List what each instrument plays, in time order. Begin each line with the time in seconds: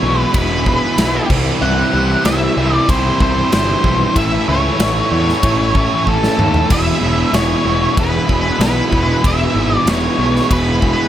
Already playing: tonewheel organ B3 E4 G#4 E5, lead electric guitar C#5
0.03 picked electric bass B1, distorted electric guitar E2 B2 E3 G#3 B3 E4
0.21 lead electric guitar B4
0.33 picked electric bass E1, distorted electric guitar E2 B2 E3 G#3 B3 E4, lead electric guitar B4, kick, ride bell
0.66 distorted electric guitar E2 B2 E3 G#3 B3 E4, kick
0.98 picked electric bass B1, distorted electric guitar E2 B2 E3 G#3 B3 E4, snare, ride bell
1.28 picked electric bass C2, distorted electric guitar C3 E3 G3 C4 E4, tonewheel organ C4 E4 G4 E5, kick, crash
1.60 picked electric bass C2, distorted electric guitar C3 E3 G3 C4 E4, lead electric guitar F#5
1.92 picked electric bass C2, distorted electric guitar C3 E3 G3 C4 E4
2.24 picked electric bass C2, distorted electric guitar C3 E3 G3 C4 E4, lead electric guitar E5, snare, ride bell
2.56 picked electric bass C2, distorted electric guitar C3 E3 G3 C4 E4
2.76 lead electric guitar D5
2.88 picked electric bass C2, distorted electric guitar C3 E3 G3 C4 E4, lead electric guitar C5, kick, ride bell
3.19 picked electric bass C2, distorted electric guitar C3 E3 G3 C4 E4, lead electric guitar C5, kick
3.50 picked electric bass G1, distorted electric guitar C3 E3 G3 C4 E4, lead electric guitar C5, snare, ride bell
3.84 picked electric bass B1, distorted electric guitar C3 E3 G3 C4 E4, kick
4.15 picked electric bass A1, distorted electric guitar A2 E3 A3 C#4 E4, tonewheel organ C#4 E4 A4 E5, lead electric guitar E5, kick, ride bell
4.48 picked electric bass C#2, distorted electric guitar A2 E3 A3 C#4 E4, lead electric guitar C#5
4.79 picked electric bass A1, distorted electric guitar A2 E3 A3 C#4 E4, snare, ride bell
5.11 picked electric bass E2, distorted electric guitar A2 E3 A3 C#4 E4, lead electric guitar C#5
5.28 snare
5.43 picked electric bass A1, distorted electric guitar A2 E3 A3 C#4 E4, kick, ride bell
5.74 distorted electric guitar A2 E3 A3 C#4 E4, kick
6.07 picked electric bass A1, distorted electric guitar A2 E3 A3 C#4 E4, lead electric guitar A4, kick
6.24 snare
6.38 picked electric bass D#2, distorted electric guitar A2 E3 A3 C#4 E4, mid tom
6.54 floor tom
6.68 picked electric bass E1, distorted electric guitar E2 B2 E3 G#3 B3 E4, tonewheel organ B3 E4 G#4 E5, lead electric guitar E5, kick, ride bell, crash
6.99 picked electric bass E1, distorted electric guitar E2 B2 E3 G#3 B3 E4
7.33 picked electric bass E1, distorted electric guitar E2 B2 E3 G#3 B3 E4, lead electric guitar C#5, snare, ride bell
7.64 picked electric bass E1, distorted electric guitar E2 B2 E3 G#3 B3 E4
7.95 picked electric bass E1, distorted electric guitar E2 B2 E3 G#3 B3 E4, kick, ride bell
8.00 lead electric guitar B4
8.26 picked electric bass E1, distorted electric guitar E2 B2 E3 G#3 B3 E4, kick
8.59 picked electric bass B1, distorted electric guitar E2 B2 E3 G#3 B3 E4, snare, ride bell
8.63 lead electric guitar B4
8.91 picked electric bass E1, distorted electric guitar E2 B2 E3 G#3 B3 E4, kick
9.24 picked electric bass E1, distorted electric guitar E2 B2 E3 G#3 B3 E4, tonewheel organ G#3 E4 G#4, lead electric guitar E5, kick, ride bell
9.54 picked electric bass G#1, distorted electric guitar E2 B2 E3 G#3 B3 E4
9.76 lead electric guitar D5
9.86 picked electric bass E1, distorted electric guitar E2 B2 E3 G#3 B3 E4, lead electric guitar C#5, snare, ride bell
10.18 picked electric bass B1, distorted electric guitar E2 B2 E3 G#3 B3 E4
10.36 snare
10.49 picked electric bass E1, distorted electric guitar E2 B2 E3 G#3 B3 E4, lead electric guitar B4, kick, ride bell
10.80 distorted electric guitar E2 B2 E3 G#3 B3 E4, kick